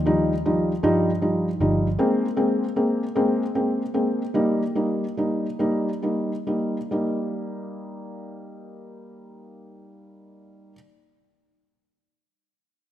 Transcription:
0, 0, Header, 1, 3, 480
1, 0, Start_track
1, 0, Key_signature, -3, "major"
1, 0, Tempo, 774194
1, 1231, Time_signature, 6, 3, 24, 8
1, 2199, Tempo, 811908
1, 3159, Tempo, 868307
1, 4119, Tempo, 906344
1, 7299, End_track
2, 0, Start_track
2, 0, Title_t, "Felt piano"
2, 0, Program_c, 0, 0
2, 35, Note_on_c, 0, 53, 59
2, 39, Note_on_c, 0, 55, 58
2, 40, Note_on_c, 0, 63, 73
2, 198, Note_off_c, 0, 53, 0
2, 200, Note_off_c, 0, 55, 0
2, 201, Note_off_c, 0, 63, 0
2, 282, Note_on_c, 0, 53, 60
2, 283, Note_on_c, 0, 55, 57
2, 285, Note_on_c, 0, 63, 62
2, 441, Note_off_c, 0, 53, 0
2, 441, Note_off_c, 0, 55, 0
2, 442, Note_off_c, 0, 63, 0
2, 515, Note_on_c, 0, 53, 75
2, 518, Note_on_c, 0, 55, 69
2, 519, Note_on_c, 0, 63, 83
2, 676, Note_off_c, 0, 53, 0
2, 678, Note_off_c, 0, 55, 0
2, 678, Note_off_c, 0, 63, 0
2, 753, Note_on_c, 0, 53, 54
2, 757, Note_on_c, 0, 55, 45
2, 757, Note_on_c, 0, 63, 58
2, 915, Note_off_c, 0, 53, 0
2, 917, Note_off_c, 0, 55, 0
2, 917, Note_off_c, 0, 63, 0
2, 995, Note_on_c, 0, 53, 55
2, 995, Note_on_c, 0, 55, 54
2, 998, Note_on_c, 0, 63, 65
2, 1155, Note_off_c, 0, 53, 0
2, 1155, Note_off_c, 0, 55, 0
2, 1157, Note_off_c, 0, 63, 0
2, 1231, Note_on_c, 0, 56, 68
2, 1234, Note_on_c, 0, 58, 61
2, 1236, Note_on_c, 0, 60, 77
2, 1393, Note_off_c, 0, 56, 0
2, 1395, Note_off_c, 0, 58, 0
2, 1395, Note_off_c, 0, 60, 0
2, 1467, Note_on_c, 0, 56, 62
2, 1470, Note_on_c, 0, 60, 66
2, 1472, Note_on_c, 0, 58, 54
2, 1631, Note_off_c, 0, 56, 0
2, 1633, Note_off_c, 0, 60, 0
2, 1634, Note_off_c, 0, 58, 0
2, 1713, Note_on_c, 0, 56, 55
2, 1713, Note_on_c, 0, 58, 55
2, 1716, Note_on_c, 0, 60, 57
2, 1875, Note_off_c, 0, 56, 0
2, 1876, Note_off_c, 0, 58, 0
2, 1877, Note_off_c, 0, 60, 0
2, 1956, Note_on_c, 0, 56, 71
2, 1957, Note_on_c, 0, 58, 60
2, 1962, Note_on_c, 0, 60, 69
2, 2119, Note_off_c, 0, 56, 0
2, 2120, Note_off_c, 0, 58, 0
2, 2123, Note_off_c, 0, 60, 0
2, 2201, Note_on_c, 0, 56, 55
2, 2201, Note_on_c, 0, 58, 43
2, 2203, Note_on_c, 0, 60, 60
2, 2358, Note_off_c, 0, 56, 0
2, 2358, Note_off_c, 0, 58, 0
2, 2359, Note_off_c, 0, 60, 0
2, 2431, Note_on_c, 0, 58, 49
2, 2433, Note_on_c, 0, 56, 54
2, 2434, Note_on_c, 0, 60, 61
2, 2593, Note_off_c, 0, 58, 0
2, 2594, Note_off_c, 0, 56, 0
2, 2594, Note_off_c, 0, 60, 0
2, 2668, Note_on_c, 0, 55, 67
2, 2672, Note_on_c, 0, 58, 60
2, 2672, Note_on_c, 0, 63, 71
2, 2832, Note_off_c, 0, 55, 0
2, 2834, Note_off_c, 0, 58, 0
2, 2834, Note_off_c, 0, 63, 0
2, 2912, Note_on_c, 0, 55, 54
2, 2914, Note_on_c, 0, 58, 49
2, 2916, Note_on_c, 0, 63, 55
2, 3078, Note_off_c, 0, 55, 0
2, 3079, Note_off_c, 0, 58, 0
2, 3080, Note_off_c, 0, 63, 0
2, 3160, Note_on_c, 0, 55, 50
2, 3162, Note_on_c, 0, 58, 45
2, 3166, Note_on_c, 0, 63, 58
2, 3316, Note_off_c, 0, 55, 0
2, 3317, Note_off_c, 0, 58, 0
2, 3319, Note_off_c, 0, 63, 0
2, 3392, Note_on_c, 0, 58, 53
2, 3393, Note_on_c, 0, 55, 59
2, 3397, Note_on_c, 0, 63, 65
2, 3551, Note_off_c, 0, 58, 0
2, 3552, Note_off_c, 0, 55, 0
2, 3554, Note_off_c, 0, 63, 0
2, 3630, Note_on_c, 0, 55, 42
2, 3633, Note_on_c, 0, 58, 44
2, 3635, Note_on_c, 0, 63, 54
2, 3793, Note_off_c, 0, 55, 0
2, 3794, Note_off_c, 0, 58, 0
2, 3795, Note_off_c, 0, 63, 0
2, 3876, Note_on_c, 0, 55, 48
2, 3876, Note_on_c, 0, 58, 43
2, 3879, Note_on_c, 0, 63, 53
2, 4040, Note_off_c, 0, 55, 0
2, 4040, Note_off_c, 0, 58, 0
2, 4041, Note_off_c, 0, 63, 0
2, 4120, Note_on_c, 0, 55, 53
2, 4124, Note_on_c, 0, 58, 49
2, 4126, Note_on_c, 0, 63, 55
2, 6142, Note_off_c, 0, 55, 0
2, 6146, Note_off_c, 0, 58, 0
2, 6147, Note_off_c, 0, 63, 0
2, 7299, End_track
3, 0, Start_track
3, 0, Title_t, "Picked electric bass"
3, 0, Program_c, 1, 34
3, 0, Note_on_c, 1, 39, 75
3, 491, Note_off_c, 1, 39, 0
3, 519, Note_on_c, 1, 43, 62
3, 969, Note_off_c, 1, 43, 0
3, 995, Note_on_c, 1, 31, 64
3, 1218, Note_off_c, 1, 31, 0
3, 7299, End_track
0, 0, End_of_file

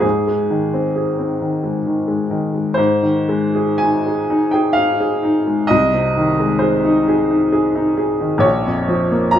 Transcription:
0, 0, Header, 1, 2, 480
1, 0, Start_track
1, 0, Key_signature, -4, "major"
1, 0, Tempo, 913242
1, 17, Time_signature, 3, 2, 24, 8
1, 1457, Tempo, 1039861
1, 1937, Tempo, 949367
1, 2897, Tempo, 907716
1, 4844, End_track
2, 0, Start_track
2, 0, Title_t, "Upright piano"
2, 0, Program_c, 0, 0
2, 0, Control_c, 0, 64, 127
2, 0, Note_on_c, 0, 44, 49
2, 0, Note_on_c, 0, 68, 58
2, 27, Control_c, 0, 64, 0
2, 135, Control_c, 0, 64, 127
2, 143, Note_on_c, 0, 56, 32
2, 264, Note_on_c, 0, 51, 39
2, 337, Note_off_c, 0, 56, 0
2, 387, Note_on_c, 0, 60, 34
2, 457, Note_off_c, 0, 51, 0
2, 495, Note_off_c, 0, 68, 0
2, 503, Note_on_c, 0, 68, 31
2, 578, Note_off_c, 0, 60, 0
2, 624, Note_on_c, 0, 60, 34
2, 695, Note_off_c, 0, 68, 0
2, 743, Note_on_c, 0, 51, 33
2, 814, Note_off_c, 0, 60, 0
2, 858, Note_on_c, 0, 56, 30
2, 931, Note_off_c, 0, 51, 0
2, 979, Note_on_c, 0, 51, 32
2, 1046, Note_off_c, 0, 56, 0
2, 1091, Note_on_c, 0, 56, 33
2, 1166, Note_off_c, 0, 51, 0
2, 1211, Note_on_c, 0, 51, 36
2, 1283, Note_off_c, 0, 56, 0
2, 1335, Note_on_c, 0, 56, 28
2, 1406, Note_off_c, 0, 51, 0
2, 1423, Note_off_c, 0, 44, 0
2, 1441, Note_on_c, 0, 72, 69
2, 1457, Note_on_c, 0, 44, 56
2, 1458, Note_off_c, 0, 56, 0
2, 1467, Control_c, 0, 64, 0
2, 1572, Control_c, 0, 64, 127
2, 1575, Note_on_c, 0, 51, 36
2, 1695, Note_on_c, 0, 56, 45
2, 1769, Note_off_c, 0, 51, 0
2, 1816, Note_on_c, 0, 68, 37
2, 1890, Note_off_c, 0, 56, 0
2, 1922, Note_on_c, 0, 80, 63
2, 1929, Note_off_c, 0, 72, 0
2, 1938, Note_on_c, 0, 63, 35
2, 2013, Note_off_c, 0, 68, 0
2, 2064, Note_on_c, 0, 68, 38
2, 2138, Note_off_c, 0, 63, 0
2, 2184, Note_on_c, 0, 63, 47
2, 2256, Note_off_c, 0, 68, 0
2, 2291, Note_on_c, 0, 79, 58
2, 2296, Note_off_c, 0, 80, 0
2, 2304, Note_on_c, 0, 68, 42
2, 2374, Note_off_c, 0, 63, 0
2, 2401, Note_on_c, 0, 77, 70
2, 2416, Note_off_c, 0, 79, 0
2, 2420, Note_on_c, 0, 63, 43
2, 2494, Note_off_c, 0, 68, 0
2, 2540, Note_on_c, 0, 68, 40
2, 2611, Note_off_c, 0, 63, 0
2, 2654, Note_on_c, 0, 63, 38
2, 2731, Note_off_c, 0, 68, 0
2, 2773, Note_on_c, 0, 56, 32
2, 2847, Note_off_c, 0, 63, 0
2, 2877, Note_off_c, 0, 44, 0
2, 2878, Note_on_c, 0, 75, 79
2, 2886, Note_off_c, 0, 77, 0
2, 2893, Note_on_c, 0, 36, 56
2, 2894, Note_off_c, 0, 56, 0
2, 2907, Control_c, 0, 64, 0
2, 2996, Control_c, 0, 64, 127
2, 3018, Note_on_c, 0, 48, 42
2, 3139, Note_on_c, 0, 51, 49
2, 3212, Note_off_c, 0, 48, 0
2, 3259, Note_on_c, 0, 56, 41
2, 3333, Note_off_c, 0, 51, 0
2, 3361, Note_on_c, 0, 72, 56
2, 3371, Note_off_c, 0, 75, 0
2, 3377, Note_on_c, 0, 68, 37
2, 3453, Note_off_c, 0, 56, 0
2, 3497, Note_on_c, 0, 63, 45
2, 3571, Note_off_c, 0, 68, 0
2, 3620, Note_on_c, 0, 68, 49
2, 3691, Note_off_c, 0, 63, 0
2, 3739, Note_on_c, 0, 63, 42
2, 3812, Note_off_c, 0, 68, 0
2, 3856, Note_on_c, 0, 68, 47
2, 3930, Note_off_c, 0, 63, 0
2, 3976, Note_on_c, 0, 63, 47
2, 4049, Note_off_c, 0, 68, 0
2, 4088, Note_off_c, 0, 72, 0
2, 4094, Note_on_c, 0, 68, 41
2, 4168, Note_off_c, 0, 63, 0
2, 4216, Note_on_c, 0, 51, 39
2, 4288, Note_off_c, 0, 68, 0
2, 4308, Note_on_c, 0, 34, 62
2, 4315, Note_off_c, 0, 36, 0
2, 4320, Note_on_c, 0, 73, 74
2, 4337, Note_off_c, 0, 51, 0
2, 4349, Control_c, 0, 64, 0
2, 4451, Control_c, 0, 64, 127
2, 4458, Note_on_c, 0, 41, 40
2, 4574, Note_on_c, 0, 53, 50
2, 4650, Note_off_c, 0, 41, 0
2, 4696, Note_on_c, 0, 58, 47
2, 4767, Note_off_c, 0, 53, 0
2, 4802, Note_on_c, 0, 82, 80
2, 4808, Note_off_c, 0, 73, 0
2, 4818, Note_on_c, 0, 65, 49
2, 4844, Note_off_c, 0, 34, 0
2, 4844, Note_off_c, 0, 58, 0
2, 4844, Note_off_c, 0, 65, 0
2, 4844, Note_off_c, 0, 82, 0
2, 4844, End_track
0, 0, End_of_file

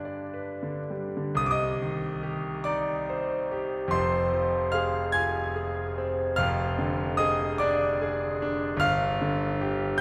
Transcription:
0, 0, Header, 1, 2, 480
1, 0, Start_track
1, 0, Key_signature, -3, "minor"
1, 0, Tempo, 1075269
1, 627, Time_signature, 6, 3, 24, 8
1, 627, Tempo, 843882
1, 2067, Tempo, 808625
1, 5671, End_track
2, 0, Start_track
2, 0, Title_t, "Grand piano"
2, 0, Program_c, 0, 0
2, 0, Control_c, 0, 64, 127
2, 0, Note_on_c, 0, 43, 61
2, 0, Note_on_c, 0, 50, 38
2, 0, Note_on_c, 0, 62, 46
2, 0, Note_on_c, 0, 71, 45
2, 0, Note_on_c, 0, 74, 47
2, 0, Note_on_c, 0, 79, 83
2, 23, Note_off_c, 0, 74, 0
2, 23, Note_on_c, 0, 74, 46
2, 101, Note_off_c, 0, 62, 0
2, 150, Note_off_c, 0, 71, 0
2, 150, Note_on_c, 0, 71, 43
2, 229, Note_off_c, 0, 74, 0
2, 280, Note_off_c, 0, 50, 0
2, 280, Note_on_c, 0, 50, 42
2, 355, Note_off_c, 0, 71, 0
2, 403, Note_off_c, 0, 79, 0
2, 403, Note_on_c, 0, 55, 41
2, 479, Note_off_c, 0, 50, 0
2, 522, Note_on_c, 0, 50, 44
2, 585, Note_off_c, 0, 55, 0
2, 595, Note_off_c, 0, 43, 0
2, 601, Note_on_c, 0, 36, 72
2, 611, Note_on_c, 0, 87, 102
2, 626, Note_off_c, 0, 50, 0
2, 637, Control_c, 0, 64, 0
2, 658, Note_off_c, 0, 87, 0
2, 660, Note_on_c, 0, 86, 81
2, 685, Note_on_c, 0, 87, 100
2, 692, Note_on_c, 0, 75, 70
2, 705, Note_off_c, 0, 86, 0
2, 745, Control_c, 0, 64, 127
2, 865, Note_on_c, 0, 51, 49
2, 1096, Note_on_c, 0, 67, 58
2, 1248, Note_off_c, 0, 51, 0
2, 1316, Note_off_c, 0, 75, 0
2, 1329, Note_on_c, 0, 86, 94
2, 1335, Note_off_c, 0, 87, 0
2, 1335, Note_on_c, 0, 74, 71
2, 1343, Note_on_c, 0, 63, 58
2, 1488, Note_off_c, 0, 67, 0
2, 1589, Note_on_c, 0, 72, 60
2, 1733, Note_off_c, 0, 63, 0
2, 1828, Note_on_c, 0, 67, 56
2, 1972, Note_off_c, 0, 72, 0
2, 2028, Note_off_c, 0, 36, 0
2, 2034, Note_on_c, 0, 41, 75
2, 2038, Note_off_c, 0, 74, 0
2, 2051, Note_on_c, 0, 84, 97
2, 2057, Note_on_c, 0, 29, 74
2, 2058, Note_off_c, 0, 86, 0
2, 2058, Note_on_c, 0, 72, 76
2, 2065, Note_off_c, 0, 67, 0
2, 2077, Control_c, 0, 64, 0
2, 2160, Control_c, 0, 64, 127
2, 2302, Note_on_c, 0, 53, 50
2, 2514, Note_off_c, 0, 72, 0
2, 2530, Note_on_c, 0, 89, 96
2, 2534, Note_on_c, 0, 77, 68
2, 2535, Note_off_c, 0, 84, 0
2, 2544, Note_on_c, 0, 68, 64
2, 2684, Note_off_c, 0, 53, 0
2, 2762, Note_off_c, 0, 77, 0
2, 2772, Note_on_c, 0, 92, 104
2, 2778, Note_off_c, 0, 89, 0
2, 2780, Note_on_c, 0, 80, 74
2, 2785, Note_on_c, 0, 65, 60
2, 2932, Note_off_c, 0, 68, 0
2, 3029, Note_on_c, 0, 68, 59
2, 3177, Note_off_c, 0, 65, 0
2, 3279, Note_on_c, 0, 60, 61
2, 3421, Note_off_c, 0, 68, 0
2, 3478, Note_off_c, 0, 41, 0
2, 3489, Note_off_c, 0, 29, 0
2, 3492, Note_off_c, 0, 80, 0
2, 3507, Note_on_c, 0, 89, 116
2, 3512, Note_off_c, 0, 92, 0
2, 3513, Note_on_c, 0, 77, 85
2, 3514, Note_on_c, 0, 29, 76
2, 3521, Note_off_c, 0, 60, 0
2, 3523, Note_on_c, 0, 41, 80
2, 3528, Control_c, 0, 64, 0
2, 3615, Control_c, 0, 64, 127
2, 3759, Note_on_c, 0, 50, 56
2, 3970, Note_off_c, 0, 77, 0
2, 3988, Note_on_c, 0, 87, 107
2, 3990, Note_off_c, 0, 89, 0
2, 3995, Note_on_c, 0, 75, 78
2, 4003, Note_on_c, 0, 68, 69
2, 4141, Note_off_c, 0, 50, 0
2, 4220, Note_off_c, 0, 75, 0
2, 4232, Note_on_c, 0, 86, 104
2, 4234, Note_off_c, 0, 87, 0
2, 4240, Note_on_c, 0, 74, 79
2, 4248, Note_on_c, 0, 62, 73
2, 4387, Note_off_c, 0, 68, 0
2, 4489, Note_on_c, 0, 68, 65
2, 4630, Note_off_c, 0, 62, 0
2, 4729, Note_on_c, 0, 62, 68
2, 4867, Note_off_c, 0, 68, 0
2, 4932, Note_off_c, 0, 29, 0
2, 4934, Note_on_c, 0, 31, 95
2, 4935, Note_off_c, 0, 74, 0
2, 4936, Note_off_c, 0, 41, 0
2, 4952, Note_on_c, 0, 89, 127
2, 4955, Note_off_c, 0, 86, 0
2, 4958, Note_on_c, 0, 77, 106
2, 4962, Note_off_c, 0, 62, 0
2, 4967, Control_c, 0, 64, 0
2, 5053, Control_c, 0, 64, 127
2, 5201, Note_on_c, 0, 50, 61
2, 5436, Note_on_c, 0, 67, 68
2, 5575, Note_off_c, 0, 50, 0
2, 5644, Note_off_c, 0, 77, 0
2, 5653, Note_on_c, 0, 91, 111
2, 5664, Note_off_c, 0, 89, 0
2, 5671, Note_off_c, 0, 31, 0
2, 5671, Note_off_c, 0, 67, 0
2, 5671, Note_off_c, 0, 91, 0
2, 5671, End_track
0, 0, End_of_file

